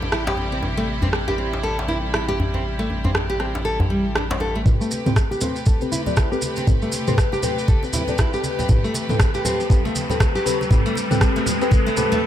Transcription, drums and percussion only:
0.02 djembe tone
0.12 cross-stick
0.27 djembe slap
0.37 djembe tone
0.63 djembe tone
1.02 djembe tone, djembe bass
1.13 cross-stick
1.28 djembe tone
1.53 djembe slap
1.64 djembe tone
1.79 djembe slap
1.88 djembe tone
2.14 cross-stick
2.30 djembe tone
2.40 djembe bass
2.54 djembe tone
2.90 djembe tone
3.05 djembe bass
3.15 cross-stick, djembe tone
3.40 cross-stick
3.55 djembe slap, djembe tone
3.80 djembe tone, djembe bass
4.15 cross-stick, djembe tone
4.31 djembe slap
4.40 djembe tone
4.66 kick, mid tom, high conga, maracas
4.81 maracas
4.91 muted conga, maracas
5.06 mid tom, high conga, maracas
5.16 kick, cross-stick, maracas
5.32 muted conga, maracas
5.41 low conga, maracas
5.56 maracas
5.66 kick, low conga, maracas
5.81 muted conga, maracas
5.92 high conga, maracas
6.06 low conga, maracas
6.17 kick, cross-stick, muted conga, high conga, maracas
6.32 maracas
6.42 high conga, maracas
6.56 muted conga, maracas
6.67 kick, mid tom, high conga, maracas
6.82 maracas
6.92 muted conga, maracas
7.07 mid tom, high conga, maracas
7.18 kick, cross-stick, maracas
7.32 muted conga, maracas
7.43 low conga, maracas
7.58 maracas
7.68 kick, high conga, maracas
7.83 muted conga, maracas
7.93 high conga, low conga, maracas
8.08 low conga, maracas
8.18 kick, cross-stick, muted conga, high conga, maracas
8.33 maracas
8.44 high conga, maracas
8.59 muted conga, low conga, maracas
8.69 kick, mid tom, high conga, maracas
8.85 maracas
8.94 muted conga, maracas
9.09 mid tom, high conga, maracas
9.20 kick, cross-stick, maracas
9.34 muted conga, maracas
9.45 low conga, maracas
9.60 maracas
9.70 kick, low conga, maracas
9.86 muted conga, maracas
9.95 high conga, maracas
10.10 low conga, maracas
10.20 kick, cross-stick, muted conga, high conga, maracas
10.36 maracas
10.46 high conga, maracas
10.61 muted conga, maracas
10.71 kick, mid tom, high conga, maracas
10.86 maracas
10.95 muted conga, maracas
11.11 mid tom, high conga, maracas
11.21 kick, cross-stick, maracas
11.36 muted conga, maracas
11.46 low conga, maracas
11.62 maracas
11.71 kick, high conga, maracas
11.87 muted conga, maracas
11.97 high conga, low conga, maracas
12.12 low conga, maracas

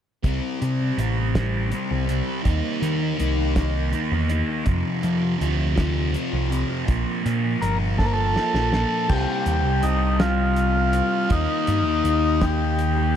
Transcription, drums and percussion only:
0.24 kick, closed hi-hat
0.62 closed hi-hat
0.99 closed hi-hat
1.35 kick, snare, closed hi-hat
1.72 closed hi-hat
2.09 closed hi-hat
2.45 kick, closed hi-hat
2.83 closed hi-hat
3.20 closed hi-hat
3.56 kick, snare, closed hi-hat
3.93 closed hi-hat
4.29 closed hi-hat
4.66 kick, closed hi-hat
5.03 closed hi-hat
5.41 closed hi-hat
5.77 kick, snare, closed hi-hat
6.14 closed hi-hat
6.52 closed hi-hat
6.88 kick, closed hi-hat
7.26 closed hi-hat
7.62 closed hi-hat
7.99 kick, snare
8.36 snare
8.55 snare
8.73 snare
9.09 kick, crash
9.46 closed hi-hat
9.83 closed hi-hat
10.20 snare, closed hi-hat
10.56 closed hi-hat
10.93 closed hi-hat
11.30 kick, closed hi-hat
11.67 closed hi-hat
12.05 closed hi-hat
12.41 kick, snare, closed hi-hat
12.79 closed hi-hat

